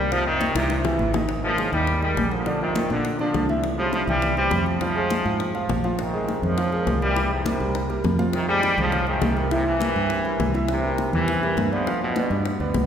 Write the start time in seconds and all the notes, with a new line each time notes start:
Already playing: C2
0.12 C3 F3 F4 F5, high bongo, high conga
0.26 C3 D#3 C4 C5, high conga
0.41 high bongo, high conga
0.55 C2 G2 C3 E3 E4 E5, high bongo, high conga
0.70 high bongo, high conga
0.85 C3 E3 E4 E5, low bongo, high conga
0.99 G#1, high conga
1.14 D#3 D#4 D#5, low bongo, high conga
1.29 high bongo
1.43 C#3 F3 G#3 G#4 A#4, high conga
1.58 G#3 G#4 A#4, high bongo, high conga
1.73 D#2 D#3 G3 D#4 D#5, high bongo, high conga, low conga
1.87 high bongo, high conga
2.02 D#3 G3 G#3 G#4 A#4, high bongo, high conga
2.17 A#1 G#3 G#4 A#4, high bongo, low bongo, high conga
2.31 D3 F3, high bongo, high conga
2.46 D3 D4 D5, high bongo, high conga
2.61 C3 D#3 F3 F4 A#4, high conga
2.75 high bongo, high conga
2.90 A#2 D3 D4 D5, high bongo, high conga
3.05 high bongo, high conga
3.19 D3 F3 D4 D5, high bongo, high conga
3.34 C2, high bongo, low bongo, high conga
3.49 E3 E4 E5, high bongo, high conga
3.64 high bongo, high conga
3.78 C#3 F3 G3 G4 C5, high conga
3.93 C3 F3 G3 G4 C5, high bongo, high conga
4.07 C2 E3 G3 E4 E5, high bongo, high conga, low conga
4.22 high bongo, high conga, low conga
4.37 E3 G3 G4 C5, high bongo, high conga
4.51 F2 G3 G4 C5, high bongo, low bongo, high conga
4.66 C3 F3, high bongo, high conga
4.81 F3 F4 F5, high bongo, high conga
4.96 G#3 G#4 C5, high conga
5.10 high bongo, high conga
5.25 G#2 F3 F4 F5, high bongo, high conga
5.40 high bongo, high conga
5.55 F3 F4 F5, high bongo, high conga
5.69 A#1, high bongo, low bongo, high conga
5.84 F3 F4 F5, high bongo, high conga
5.99 C3 D#3, high bongo, high conga
6.13 G#3 G#4 A#4, high conga
6.29 high bongo, high conga
6.42 F2 C#3 F3 G#3 G#4 A#4, high bongo, high conga, low conga
6.57 F3 F4 F5, high bongo, high conga
6.72 G#3 G#4 A#4, high bongo, high conga
6.87 C2, high bongo, low bongo, high conga
7.01 E3 G3 G4 A#4, high bongo, high conga
7.16 E3 E4 E5, high bongo, high conga
7.31 G#2 C3, high conga
7.45 G3 G4 A#4, high bongo, high conga
7.60 C2 G3 G4 A#4, high bongo, high conga
7.75 high bongo, high conga
7.89 G3 G4 A#4, high bongo, high conga
8.04 F2, high bongo, low bongo, high conga
8.18 F3 F4 F5, high bongo, high conga
8.33 C3 D#3, high bongo, high conga
8.48 D#3 G3 G#3 G#4 C5, high conga
8.63 high bongo, high conga
8.78 C2 C#3 F3 G#3 G#4 C5, high bongo, high conga, low conga
8.92 F3 F4 F5, high bongo, high conga, low conga
9.07 C3 D#3 G#3 G#4 C5, high bongo, high conga
9.22 C2, high bongo, low bongo, high conga
9.36 G3 G4 A#4, high bongo, high conga
9.51 G2 C3 E3 E4 E5, high bongo, high conga
9.67 C3 E3, high conga
9.81 G3 G4 A#4, high bongo, high conga
9.95 G2 G3 G4 A#4, high bongo, high conga
10.10 high bongo, high conga
10.25 G3 G4 A#4, high bongo, high conga
10.40 C2, high bongo, low bongo, high conga
10.54 E3 E4 E5, high bongo, high conga
10.69 G2 C3, high bongo, high conga
10.84 G3 G4 A#4, high conga
10.98 high bongo, high conga
11.13 E2 C3 E3 G3 G4 A#4, high bongo, high conga, low conga
11.28 E3 E4 E5, high bongo, high conga
11.43 G3 G4 A#4, high bongo, high conga
11.57 G2, high bongo, low bongo, high conga
11.72 D3 F3 B3 B4 D5, high bongo, high conga
11.87 F3 F4 F5, high bongo, high conga
12.02 G2 B2, high conga
12.16 B3 B4 D5, high bongo, high conga
12.30 G2 B3 B4 D5, high bongo, high conga
12.45 high bongo, high conga
12.60 D2 B3 B4 D5, high bongo, high conga
12.74 C2, high bongo, low bongo, high conga